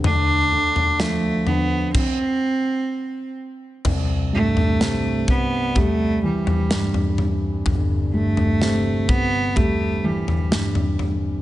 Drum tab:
CC |--------x-------|x---------------|----------------|
SD |----o-----------|----o-------o---|----o-------o---|
FT |o--o--o---------|o--o----o--o-oo-|o--o----o--o-oo-|
BD |--------o-------|o-----o-o-------|o-----o-o-------|